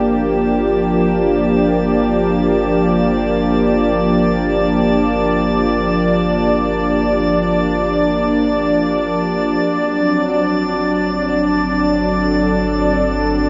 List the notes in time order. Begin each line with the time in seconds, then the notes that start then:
Already playing: G1 F3 A#3 D4 G4 D5 A5
9.63 G1 F#3
9.77 C4
11.83 A4